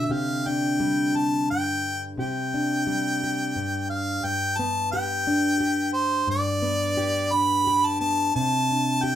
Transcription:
Already playing: steel-string acoustic guitar D3 D4
0.05 steel-string acoustic guitar C3, harmonica E5
0.11 steel-string acoustic guitar G4, harmonica F5
0.47 steel-string acoustic guitar D4, harmonica G5
0.80 steel-string acoustic guitar G3
1.15 steel-string acoustic guitar G4, harmonica A5
1.50 steel-string acoustic guitar G2, harmonica G5
2.17 steel-string acoustic guitar C3 G4, harmonica G5
2.54 steel-string acoustic guitar D4
2.87 steel-string acoustic guitar G3
3.24 steel-string acoustic guitar G4
3.56 steel-string acoustic guitar G2
3.90 harmonica F5
4.24 steel-string acoustic guitar G2, harmonica G5
4.58 steel-string acoustic guitar B3, harmonica A5
4.92 steel-string acoustic guitar G4, harmonica G5
5.27 steel-string acoustic guitar D4
5.60 steel-string acoustic guitar G4
5.93 harmonica C5
6.27 steel-string acoustic guitar G2, harmonica D5
6.62 steel-string acoustic guitar B3
6.97 steel-string acoustic guitar G4
7.32 steel-string acoustic guitar D4, harmonica B5
7.67 steel-string acoustic guitar G4
7.85 harmonica A5
8.00 steel-string acoustic guitar B3, harmonica A5
8.36 steel-string acoustic guitar C3, harmonica A5
8.71 steel-string acoustic guitar D4
9.03 steel-string acoustic guitar G4, harmonica G5

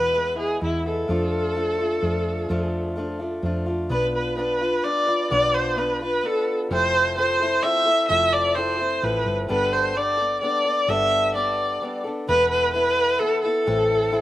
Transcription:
Already playing: steel-string acoustic guitar E2 B2 E3 G#3 B3 E4, fingered electric bass E2, viola B4
0.13 steel-string acoustic guitar E3 G#3 B3 E4
0.35 steel-string acoustic guitar E3 G#3 B3 E4, viola G#4
0.61 fingered electric bass E2, steel-string acoustic guitar E3 G#3 B3 E4, viola E4
0.84 steel-string acoustic guitar E3 G#3 B3 E4, viola A4
1.08 fingered electric bass F2, steel-string acoustic guitar F3 A3 D4 F4
1.54 steel-string acoustic guitar F3 A3 D4 F4
1.78 steel-string acoustic guitar A3 D4 F4
2.01 fingered electric bass F2, steel-string acoustic guitar F3 A3 D4 F4
2.49 fingered electric bass F2, steel-string acoustic guitar F3 A3 D4 F4
2.96 steel-string acoustic guitar F3 A3 D4 F4
3.19 steel-string acoustic guitar A3 D4 F4
3.43 fingered electric bass F2, steel-string acoustic guitar F3 A3 D4 F4
3.66 steel-string acoustic guitar A3 D4 F4
3.89 fingered electric bass B1, steel-string acoustic guitar B3 D4 F4 B4, viola B4
4.15 viola B4
4.37 steel-string acoustic guitar B3 D4 F4 B4, viola B4
4.59 steel-string acoustic guitar F4 B4
4.63 steel-string acoustic guitar D4
4.83 steel-string acoustic guitar B3 D4 F4 B4, viola D5
5.06 steel-string acoustic guitar D4 F4 B4
5.31 fingered electric bass B1, steel-string acoustic guitar B3 D4 F4 B4, viola D5
5.54 viola C5
5.76 steel-string acoustic guitar B3 D4 F4 B4, viola B4
6.01 steel-string acoustic guitar D4 F4 B4, viola B4
6.23 steel-string acoustic guitar B3 D4 F4 B4, viola A4
6.71 fingered electric bass F1, steel-string acoustic guitar F3 C4 E4 A4, viola C5
7.16 steel-string acoustic guitar F3 C4 E4 A4, viola C5
7.40 steel-string acoustic guitar C4 E4 A4
7.62 steel-string acoustic guitar F3 C4 E4 A4, viola E5
7.85 steel-string acoustic guitar C4 E4 A4
8.08 fingered electric bass F1, steel-string acoustic guitar F3 C4 E4 A4, viola E5
8.32 viola D5
8.55 steel-string acoustic guitar F3 C4 E4 A4, viola C5
8.77 steel-string acoustic guitar C4 E4 A4
9.02 fingered electric bass A1, steel-string acoustic guitar F3 C4 E4 A4, viola B4
9.26 fingered electric bass G1
9.49 fingered electric bass G1, steel-string acoustic guitar G3 B3 D4 A4, viola B4
9.73 viola C5
9.94 steel-string acoustic guitar G3 B3 D4 A4, viola D5
10.17 steel-string acoustic guitar B3 D4 A4
10.41 steel-string acoustic guitar G3 B3 D4 A4, viola D5
10.64 steel-string acoustic guitar B3 D4 A4
10.88 fingered electric bass G1, steel-string acoustic guitar G3 B3 D4 A4, viola E5
11.34 steel-string acoustic guitar G3 B3 D4 A4, viola D5
11.81 steel-string acoustic guitar G3 B3 D4 A4
12.04 steel-string acoustic guitar B3 D4 A4
12.27 fingered electric bass E1, steel-string acoustic guitar E3 B3 E4 A4, viola B4
12.51 viola B4
12.73 steel-string acoustic guitar E3 B3 E4 A4, viola B4
13.19 steel-string acoustic guitar E3 B3 E4 A4, viola A4
13.42 steel-string acoustic guitar E4 A4, viola A4
13.46 steel-string acoustic guitar B3
13.66 fingered electric bass A1, steel-string acoustic guitar A2 E3 C4 E4 A4
14.10 steel-string acoustic guitar E3 C4 E4 A4

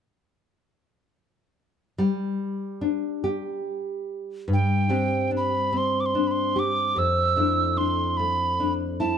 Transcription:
1.98 nylon-string guitar G3
2.81 nylon-string guitar D4
3.24 nylon-string guitar G4
4.48 nylon-string guitar G2
4.53 tin whistle G5
4.89 nylon-string guitar C4 D4 G4
5.31 nylon-string guitar D4
5.37 tin whistle B5
5.73 nylon-string guitar C4
5.77 tin whistle C6
6.00 tin whistle D6
6.06 tin whistle C6
6.15 nylon-string guitar D4
6.27 tin whistle B5
6.31 tin whistle C6
6.56 nylon-string guitar G4, tin whistle D6
6.96 nylon-string guitar F2, tin whistle E6
7.36 nylon-string guitar A3 D4 E4
7.76 nylon-string guitar D4, tin whistle C6
8.17 nylon-string guitar A3, tin whistle B5
8.60 nylon-string guitar D4
9.00 nylon-string guitar E4, tin whistle A5

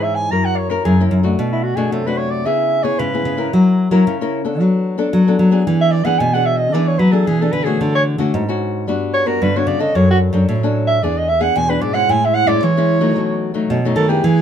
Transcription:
Already playing: nylon-string guitar G#2 E3 C#4 E4 G#4
0.03 soprano saxophone E5
0.15 soprano saxophone G#5
0.31 nylon-string guitar F#2 F#3 C#4 E4 A#4, soprano saxophone A#5
0.45 soprano saxophone F#5
0.57 soprano saxophone C#5
0.70 nylon-string guitar C#4 E4 A#4, soprano saxophone A#4
0.85 nylon-string guitar F#2 C#3, soprano saxophone G#4
1.00 nylon-string guitar C#4 E4 A#4
1.11 nylon-string guitar F#2
1.23 nylon-string guitar A3 D4 F#4
1.39 nylon-string guitar B2
1.52 soprano saxophone E4
1.63 soprano saxophone F#4
1.76 nylon-string guitar B2 A3 D4 F#4, soprano saxophone G#4
1.92 nylon-string guitar F#2 C3, soprano saxophone A4
2.06 nylon-string guitar A3 D4 F#4, soprano saxophone B4
2.17 soprano saxophone C#5
2.30 soprano saxophone D5
2.45 nylon-string guitar C#3 B3 E4 G#4, soprano saxophone E5
2.83 nylon-string guitar B3 E4 G#4, soprano saxophone C#5
2.99 nylon-string guitar G#2 C#3, soprano saxophone B4
3.14 nylon-string guitar B3 E4 G#4
3.25 nylon-string guitar C#3
3.37 nylon-string guitar C#4 E4 A#4
3.53 nylon-string guitar F#3
3.91 nylon-string guitar F#3 C#4 E4 A#4
4.07 nylon-string guitar C#3
4.21 nylon-string guitar C#4 E4 A#4
4.45 nylon-string guitar B3 D4 A4
4.60 nylon-string guitar F#3
4.98 nylon-string guitar B3 D4 A4
5.13 nylon-string guitar F#3
5.28 nylon-string guitar B3 D4 A4
5.39 nylon-string guitar F#3
5.51 nylon-string guitar B3 D4 G#4
5.67 nylon-string guitar E3
5.81 soprano saxophone E5
5.92 soprano saxophone D5
6.05 nylon-string guitar E3 B3 D4 G#4, soprano saxophone F#5
6.19 nylon-string guitar B2, soprano saxophone G#5
6.34 nylon-string guitar B3 D4 G#4, soprano saxophone F#5
6.46 soprano saxophone E5
6.57 soprano saxophone D#5
6.73 nylon-string guitar E3 B3 D4 G#4, soprano saxophone D5
6.88 soprano saxophone C#5
6.99 nylon-string guitar F#3, soprano saxophone B4
7.12 nylon-string guitar B3 D4 G#4, soprano saxophone A4
7.27 nylon-string guitar B2 E3, soprano saxophone G#4
7.41 nylon-string guitar B3 D4 G#4, soprano saxophone A4
7.52 nylon-string guitar D3, soprano saxophone B4
7.64 nylon-string guitar A3 C#4 F#4, soprano saxophone G#4
7.81 nylon-string guitar D3, soprano saxophone A4
7.95 soprano saxophone C#5
8.18 nylon-string guitar D3 A3 C#4 F#4
8.34 nylon-string guitar G#2
8.49 nylon-string guitar C#4 F#4
8.87 nylon-string guitar G2 G3 B3 D4 F#4
9.14 soprano saxophone C#5
9.26 nylon-string guitar B3 D4 F#4, soprano saxophone A#4
9.42 nylon-string guitar G2 D3, soprano saxophone B4
9.56 nylon-string guitar B3 D4 F#4, soprano saxophone C#5
9.67 nylon-string guitar C#3, soprano saxophone D5
9.79 nylon-string guitar C#4 D4 A4, soprano saxophone D#5
9.95 nylon-string guitar F#2 F#3, soprano saxophone C#5
10.11 soprano saxophone F#4
10.33 nylon-string guitar F#2 C#4 D4 A4
10.49 nylon-string guitar A2 F#3
10.63 nylon-string guitar C#4 D4 A4
10.87 soprano saxophone E5
11.02 nylon-string guitar E2 E3 B3 D4 G#4, soprano saxophone D5
11.18 soprano saxophone D#5
11.29 soprano saxophone E5
11.40 nylon-string guitar B3 D4 G#4, soprano saxophone F#5
11.56 nylon-string guitar E2 B2, soprano saxophone G#5
11.69 nylon-string guitar B3 D4 G#4, soprano saxophone B4
11.81 nylon-string guitar G#2, soprano saxophone D5
11.94 nylon-string guitar G#3 C#4 E4, soprano saxophone F#5
12.09 nylon-string guitar A2, soprano saxophone G#5
12.25 soprano saxophone E5
12.35 soprano saxophone F#5
12.47 nylon-string guitar A2 G#3 C#4 E4, soprano saxophone D5
12.63 nylon-string guitar E3, soprano saxophone C#5
12.77 nylon-string guitar G#3 C#4 E4
13.01 nylon-string guitar F#3 A3 D#4
13.17 nylon-string guitar B2
13.54 nylon-string guitar F#3 A3 D#4
13.70 nylon-string guitar F#2 B2
13.85 nylon-string guitar F#3 A3 D#4
13.96 nylon-string guitar D#3, soprano saxophone A4
14.09 nylon-string guitar B3 E4 G#4, soprano saxophone G4
14.24 nylon-string guitar E3, soprano saxophone G#4

